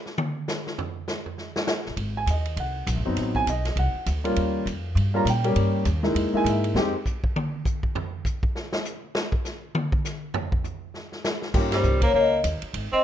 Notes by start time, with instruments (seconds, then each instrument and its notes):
0.06 snare
0.18 high tom
0.48 snare, hi-hat pedal
0.67 snare
0.78 floor tom
1.08 snare, hi-hat pedal
1.26 floor tom
1.38 snare
1.56 snare
1.67 snare, hi-hat pedal
1.85 upright bass A#1, snare
1.97 upright bass G#1, ride
2.17 grand piano G#5
2.26 upright bass D#2, hi-hat pedal, ride
2.31 grand piano D#5
2.45 ride
2.56 upright bass C2, grand piano F#5, ride
2.87 upright bass A#1, hi-hat pedal, ride
2.96 upright bass G#1
3.05 upright bass F#1, grand piano F#3 B3 C4 D#4
3.16 upright bass A1, snare, ride
3.35 grand piano G#5, kick
3.47 upright bass B1, grand piano D#5, hi-hat pedal, ride
3.65 snare, ride
3.76 upright bass C2, grand piano F#5, ride
3.94 muted upright bass stroke
4.06 upright bass D2, hi-hat pedal, ride
4.24 grand piano G3 A#3 C#4 F4, ride
4.36 upright bass D#2, ride
4.66 upright bass F2, hi-hat pedal, ride
4.95 upright bass G2, ride
5.14 grand piano G3 A#3 C#4 F4 A#5
5.25 upright bass A#2, hi-hat pedal, ride
5.30 grand piano G5
5.44 grand piano G3 A#3 C#4 G4, ride
5.56 upright bass G2, ride
5.85 upright bass D#2, hi-hat pedal, ride
6.03 grand piano G#3 A#3 D#4 E4, snare
6.15 upright bass E2, ride
6.33 grand piano G#3 A#3 D#4 E4, muted upright bass stroke
6.37 grand piano G#5
6.44 upright bass G#2, hi-hat pedal, ride
6.50 grand piano E5
6.64 ride
6.74 upright bass F2, grand piano G#3 C4 D#4 G4, snare
7.06 kick, hi-hat pedal
7.24 kick
7.36 high tom
7.65 kick, hi-hat pedal
7.83 kick
7.95 floor tom
8.25 kick, hi-hat pedal
8.43 kick
8.55 snare
8.73 snare
8.85 hi-hat pedal
9.15 snare
9.32 kick
9.45 snare, hi-hat pedal
9.75 high tom
9.92 kick
10.05 snare, hi-hat pedal
10.34 floor tom
10.52 kick
10.64 floor tom, hi-hat pedal
10.94 snare
11.12 snare
11.24 snare, hi-hat pedal
11.42 snare
11.54 upright bass G2, grand piano A#3 C#4 D#4 F4 G4, kick, snare, crash
11.72 tenor saxophone G3, vibraphone C5, snare, ride
11.83 upright bass C2, hi-hat pedal
12.02 tenor saxophone A#3, vibraphone C#5, kick, ride
12.14 upright bass C#2, tenor saxophone A#3
12.19 vibraphone D#5
12.44 upright bass D#2, hi-hat pedal, ride
12.62 muted upright bass stroke, ride
12.74 upright bass G#1, ride
12.92 tenor saxophone C4, vibraphone D#5, muted upright bass stroke